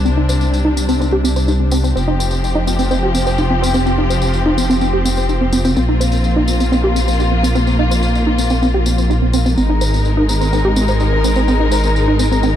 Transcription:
Already playing: C2 C3 G3 D4
0.05 C4, tambourine
0.17 D#4
0.29 C5, tambourine
0.41 tambourine
0.54 tambourine
0.65 D#4
0.77 C4, tambourine
0.89 C4, tambourine
1.00 C4, tambourine
1.12 G4
1.24 C4, tambourine
1.36 C5, tambourine
1.48 D#4, tambourine
1.60 C4
1.71 C4, tambourine
1.84 C4, tambourine
1.96 F1 F3 C4 G4, tambourine
2.08 D#4
2.19 C5, tambourine
2.31 tambourine
2.44 tambourine
2.55 D#4
2.67 C4, tambourine
2.79 C4, tambourine
2.91 C4, tambourine
3.03 G4
3.15 C4, tambourine
3.27 C5, tambourine
3.38 D#4, tambourine
3.51 C4
3.62 C4, tambourine
3.74 C4, tambourine
3.86 C4, tambourine
3.98 D#4
4.10 C5, tambourine
4.22 tambourine
4.34 tambourine
4.46 D#4
4.58 C4, tambourine
4.70 C4, tambourine
4.81 C4, tambourine
4.93 G4
5.05 C4, tambourine
5.17 C5, tambourine
5.29 D#4, tambourine
5.41 C4
5.53 C4, tambourine
5.65 C4, tambourine
5.77 A#1 A#3 C4 F4, tambourine
5.89 D#4
6.01 C5, tambourine
6.12 tambourine
6.24 tambourine
6.36 D#4
6.48 C4, tambourine
6.60 C4, tambourine
6.72 C4, tambourine
6.84 G4
6.96 C4, tambourine
7.08 C5, tambourine
7.20 D#4, tambourine
7.32 C4
7.43 C4, tambourine
7.55 C4, tambourine
7.67 C4, tambourine
7.79 D#4
7.91 C5, tambourine
8.03 tambourine
8.15 tambourine
8.27 D#4
8.38 C4, tambourine
8.50 C4, tambourine
8.62 C4, tambourine
8.74 G4
8.86 C4, tambourine
8.98 C5, tambourine
9.10 D#4, tambourine
9.22 C4
9.33 C4, tambourine
9.46 C4, tambourine
9.57 G#1 G#3 C4 D#4 A#4, tambourine
9.70 D#4
9.81 C5, tambourine
9.94 tambourine
10.05 tambourine
10.17 D#4
10.29 C4, tambourine
10.41 C4, tambourine
10.53 C4, tambourine
10.65 G4
10.76 C4, tambourine
10.88 C5, tambourine
11.00 D#4, tambourine
11.13 C4
11.24 C4, tambourine
11.36 C4, tambourine
11.48 C4, tambourine
11.60 D#4
11.72 C5, tambourine
11.84 tambourine
11.96 tambourine
12.08 D#4
12.19 C4, tambourine
12.32 C4, tambourine
12.43 C4, tambourine

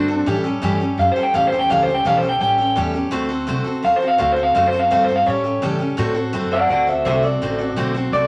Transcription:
Already playing: G2 D4
0.08 C4 F#4 A4
0.26 A2 E3 G3 C#4 G4 A4
0.44 G3 C#4 G4 A4
0.62 G2 A2 E3 G3 C#4 G4 A4
0.80 G3 C#4 G4 A4
0.98 F#2 G3 C#4 G4 A4 F5
1.12 C5
1.16 G3 C#4 G4 A4, muted upright bass stroke
1.23 G5
1.34 E2 A2 E3 G3 C#4 G4 A4 F5
1.47 C5
1.52 G3 C#4 G4 A4
1.59 G5
1.69 C#2 A2 E3 G3 C#4 G4 A4 F5
1.83 C5
1.87 G3 C#4 G4 A4
1.94 G5
2.05 B1 A2 E3 G3 C#4 G4 A4 F5
2.17 C5
2.23 G3 C#4 G4 A4
2.29 G5
2.40 A1 G3 C#4 G4 A4 G5
2.58 G3 C#4 G4 A4
2.76 E2 A2 E3 G3 C#4 G4 A4
2.94 G3 C#4 G4 A4
3.11 D2 D3 A3 C4 F#4 A4
3.29 C4 F#4 A4
3.47 C2 D3 A3 C4 F#4 A4
3.64 C4 F#4 A4
3.82 E2 A3 C4 F#4 A4 F5
3.96 C5
4.00 C4 F#4 A4
4.08 F5
4.18 D2 D3 A3 C4 F#4 A4 F5
4.33 A4 C5
4.38 C4 F#4
4.43 F5
4.55 F#2 D3 A3 C4 F#4 A4 F5
4.67 C5
4.73 C4 F#4 A4
4.80 F5
4.91 G2 D3 A3 C4 F#4 A4 F5
5.04 C5
5.08 C4 F#4 A4
5.16 F5
5.26 A2 G3 C#4 G4 A4 C#5
5.44 G3 C#4 G4 A4
5.62 A2 C#3 E3 G3 C#4 G4 A4
5.79 G3 C#4 G4 A4
5.97 A2 D3 A3 C4 F#4 A4
6.15 C4 F#4 A4
6.33 F#2 D3 A3 C4 F#4 A4
6.51 C4 F#4 A4 D5 F#5
6.69 D2 A3 C4 F#4 A4 D5 F#5
6.87 C4 F#4 A4 C5 E5
7.05 C2 D3 A3 C4 F#4 A4 C5 E5
7.23 C4 F#4 A4 D5
7.42 A1 D3 A3 C4 F#4 A4
7.58 C4 F#4 A4
7.77 B1 D3 A3 C4 F#4 A4
7.94 C4 F#4 A4
8.13 C2 A3 C4 F#4 A4 D5

